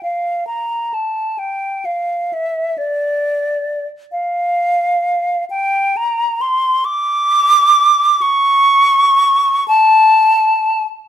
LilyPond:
\new Staff \with { instrumentName = "Flute" } { \time 6/8 \key d \minor \tempo 4. = 44 f''8 bes''8 a''8 g''8 f''8 e''8 | d''4 r8 f''4. | g''8 bes''8 c'''8 d'''4. | cis'''4. a''4 r8 | }